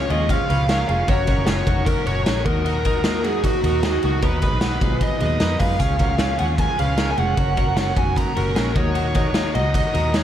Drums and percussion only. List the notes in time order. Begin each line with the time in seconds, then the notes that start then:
0.10 ride
0.29 kick, ride
0.50 ride
0.69 snare, ride
0.89 ride
1.08 kick, ride
1.27 kick, ride
1.47 snare, ride
1.67 kick, ride
1.86 kick, ride
2.07 ride
2.26 snare, ride
2.46 kick, ride
2.66 ride
2.85 kick, ride
3.04 snare, ride
3.24 ride
3.44 kick, ride
3.64 ride
3.83 snare, ride
4.03 ride
4.22 kick, ride
4.42 kick, ride
4.61 snare, ride
4.81 kick, ride
5.01 kick, ride
5.20 ride
5.40 snare, ride
5.60 kick, open hi-hat, ride
5.80 kick, hi-hat pedal, ride
5.99 kick, ride
6.18 snare, ride
6.39 ride
6.58 kick, ride
6.79 ride
6.97 snare, ride
7.18 ride
7.37 kick, ride
7.57 kick, ride
7.77 snare, ride
7.96 kick, ride
8.16 kick, ride
8.36 ride
8.56 snare, ride
8.76 kick, ride
8.95 ride
9.15 kick, ride
9.34 snare, ride
9.55 ride
9.74 kick, ride
9.94 ride
10.14 snare, ride